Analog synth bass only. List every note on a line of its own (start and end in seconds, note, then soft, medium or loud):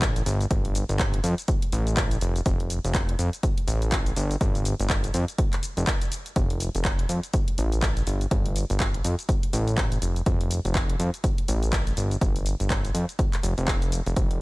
0.00 0.22 A1 loud
0.26 0.46 G1 loud
0.51 0.84 G1 loud
0.89 1.20 G1 medium
1.24 1.35 F2 medium
1.72 2.18 A1 loud
2.21 2.41 F1 loud
2.46 2.79 F1 loud
2.84 3.15 F1 medium
3.19 3.30 F2 medium
3.67 4.13 A1 loud
4.16 4.36 G1 loud
4.41 4.74 G1 loud
4.80 5.10 G1 medium
5.14 5.25 F2 medium
5.77 5.85 F1 medium
6.36 6.69 F1 loud
6.75 7.05 F1 medium
7.09 7.20 F2 medium
7.58 8.03 A1 loud
8.07 8.26 G1 loud
8.31 8.64 G1 loud
8.70 9.01 G1 medium
9.04 9.15 F2 medium
9.53 9.98 A1 loud
10.02 10.22 F1 loud
10.26 10.60 F1 loud
10.65 10.96 F1 medium
10.99 11.10 F2 medium
11.48 11.93 A1 loud
11.97 12.17 G1 loud
12.21 12.55 G1 loud
12.60 12.91 G1 medium
12.95 13.05 F2 medium
13.43 13.54 F1 medium
13.58 14.01 F1 medium
14.06 14.14 F1 medium
14.16 14.41 F1 loud